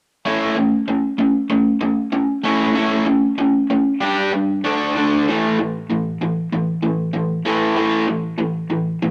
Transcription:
0.26 0.55 A3 medium
0.26 0.55 C#4 medium
0.26 0.55 E4 loud
0.56 0.85 A3 medium
0.56 0.85 C#4 medium
0.88 1.16 A3 medium
0.88 1.16 C#4 medium
1.18 1.47 A3 medium
1.18 1.47 C#4 medium
1.50 1.78 A3 medium
1.50 1.78 C#4 medium
1.81 2.09 A3 medium
1.81 2.09 C#4 medium
2.12 2.41 A3 medium
2.12 2.41 C#4 medium
2.44 2.73 A3 medium
2.44 2.74 C#4 medium
2.44 2.74 E4 medium
2.75 3.04 A3 medium
2.75 3.05 C#4 loud
2.75 3.05 E4 medium
3.06 3.34 A3 medium
3.06 3.35 C#4 medium
3.38 3.66 A3 medium
3.38 3.66 C#4 medium
3.70 3.98 A3 medium
3.70 3.98 C#4 medium
4.01 4.30 G3 medium
4.01 4.30 D4 medium
4.01 4.30 G4 loud
4.33 4.60 G3 medium
4.33 4.60 D4 medium
4.64 4.93 D3 medium
4.64 4.93 A3 medium
4.64 4.93 D4 loud
4.95 5.24 D3 medium
4.95 5.24 A3 medium
4.95 5.25 D4 medium
5.28 5.56 A2 medium
5.28 5.56 E3 medium
5.28 5.57 A3 medium
5.58 5.86 A2 medium
5.58 5.86 E3 medium
5.89 6.17 A2 medium
5.89 6.17 E3 medium
6.21 6.48 A2 medium
6.21 6.49 E3 medium
6.53 6.80 A2 medium
6.53 6.80 E3 medium
6.83 7.10 A2 medium
6.83 7.10 E3 medium
7.13 7.41 A2 medium
7.13 7.41 E3 medium
7.45 7.74 A2 medium
7.45 7.75 E3 medium
7.45 7.75 A3 medium
7.76 8.05 A2 medium
7.76 8.06 E3 medium
7.76 8.05 A3 medium
8.08 8.36 A2 medium
8.08 8.36 E3 medium
8.38 8.66 A2 medium
8.38 8.67 E3 medium
8.70 8.98 A2 medium
8.70 8.98 E3 medium
9.02 9.11 A2 medium
9.02 9.11 E3 medium

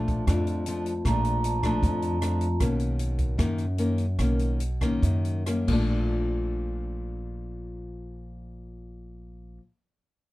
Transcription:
0.00 0.23 A#1 medium
0.00 0.26 A#2 soft
0.00 0.25 F3 medium
0.00 0.25 A3 medium
0.00 0.25 D4 soft
0.00 0.92 A5 soft
0.08 kick soft
0.08 closed hi-hat soft
0.27 1.03 F2 medium
0.27 1.01 F2 medium
0.27 0.63 F3 medium
0.27 0.63 A3 medium
0.27 0.64 D4 medium
0.27 kick soft
0.27 cross-stick medium
0.27 closed hi-hat soft
0.47 closed hi-hat soft
0.66 0.92 F3 medium
0.66 0.92 A3 soft
0.66 0.92 D4 medium
0.66 closed hi-hat soft
0.86 closed hi-hat soft
1.05 1.79 A#1 medium
1.05 1.81 A#2 soft
1.05 1.61 F3 soft
1.05 1.61 A3 medium
1.05 1.61 D4 medium
1.05 2.28 A#5 soft
1.05 kick medium
1.05 cross-stick medium
1.05 closed hi-hat soft
1.25 closed hi-hat soft
1.44 2.66 A5 soft
1.44 closed hi-hat soft
1.63 2.19 F3 medium
1.63 2.19 A3 medium
1.63 2.19 D4 medium
1.63 kick soft
1.63 cross-stick medium
1.63 closed hi-hat soft
1.83 2.56 F2 medium
1.83 2.59 F2 medium
1.83 kick medium
1.83 closed hi-hat soft
2.02 closed hi-hat soft
2.21 2.46 F3 soft
2.21 2.47 A3 soft
2.21 2.47 D4 soft
2.21 cross-stick medium
2.21 closed hi-hat soft
2.41 closed hi-hat soft
2.60 3.34 B1 medium
2.60 3.37 B2 soft
2.60 3.35 D#3 soft
2.60 3.36 A#3 soft
2.60 3.36 C#4 medium
2.60 kick medium
2.60 cross-stick medium
2.60 closed hi-hat soft
2.80 closed hi-hat soft
2.99 closed hi-hat soft
3.19 kick soft
3.19 closed hi-hat soft
3.38 4.17 F#2 medium
3.38 4.15 F#2 medium
3.38 3.64 D#3 medium
3.38 3.64 A#3 soft
3.38 3.65 C#4 medium
3.38 kick medium
3.38 cross-stick medium
3.38 closed hi-hat soft
3.58 closed hi-hat soft
3.78 4.04 D#3 soft
3.78 4.05 A#3 soft
3.78 4.05 C#4 soft
3.78 closed hi-hat soft
3.98 closed hi-hat soft
4.19 4.98 B1 medium
4.19 5.01 B2 soft
4.19 4.60 D#3 soft
4.19 4.60 A#3 soft
4.19 4.61 C#4 soft
4.19 kick soft
4.19 cross-stick medium
4.19 closed hi-hat soft
4.39 closed hi-hat soft
4.60 closed hi-hat soft
4.81 5.43 D#3 medium
4.81 5.43 A#3 soft
4.81 5.43 C#4 medium
4.81 kick soft
4.81 cross-stick medium
4.81 closed hi-hat soft
5.02 5.64 F#2 medium
5.02 5.68 F#2 medium
5.02 kick medium
5.02 closed hi-hat soft
5.25 closed hi-hat soft
5.46 5.68 D#3 soft
5.46 5.69 A#3 soft
5.46 5.69 C#4 medium
5.46 cross-stick soft
5.46 closed hi-hat soft
5.67 9.57 A#1 medium
5.67 9.60 A#2 medium
5.67 9.62 F3 medium
5.67 kick medium
5.67 crash medium
5.71 9.64 A3 medium
5.71 9.66 D4 medium

